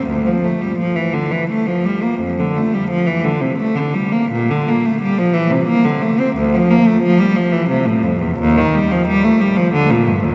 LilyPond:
\new Staff \with { instrumentName = "Cello" } { \clef bass \time 3/4 \key d \minor \tempo 4 = 88 d,16 f16 a16 g16 f16 e16 d16 e16 a16 f16 g16 bes16 | f,16 d16 a16 g16 f16 e16 d16 c16 a16 d16 g16 bes16 | bes,16 d16 bes16 a16 g16 f16 e16 c16 bes16 d16 a16 c'16 | d,16 f16 bes16 a16 f16 g16 f16 e16 c16 a,16 f,16 e,16 |
\key ees \lydian ees,16 ees16 g16 f16 g16 a16 g16 f16 d16 bes,16 g,16 ees,16 | }